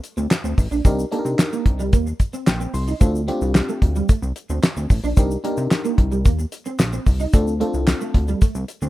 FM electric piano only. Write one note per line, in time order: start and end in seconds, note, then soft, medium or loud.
0.85 1.04 D4 medium
0.85 1.05 D#4 medium
0.85 1.05 G4 medium
0.85 1.05 A#4 medium
1.11 1.90 D4 medium
1.11 1.90 D#4 medium
1.11 1.90 G4 medium
1.11 1.19 A4 medium
1.19 1.94 A#4 medium
2.47 2.72 G5 medium
2.74 2.99 C6 medium
3.00 3.20 C4 medium
3.00 3.20 D4 medium
3.00 3.21 F4 medium
3.00 3.21 A4 medium
3.28 4.06 C4 medium
3.28 4.06 D4 medium
3.28 4.07 F4 medium
3.28 4.07 G4 loud
5.17 5.37 D4 medium
5.17 5.37 D#4 medium
5.17 5.37 G4 medium
5.17 5.37 A#4 medium
5.44 6.22 D4 medium
5.44 6.23 D#4 medium
5.44 6.23 G4 medium
5.44 6.23 A#4 loud
7.33 7.53 C4 medium
7.33 7.53 D4 medium
7.33 7.53 F4 medium
7.33 7.53 A4 medium
7.60 8.39 C4 medium
7.60 8.39 D4 medium
7.60 8.39 F4 medium
7.60 8.39 A4 medium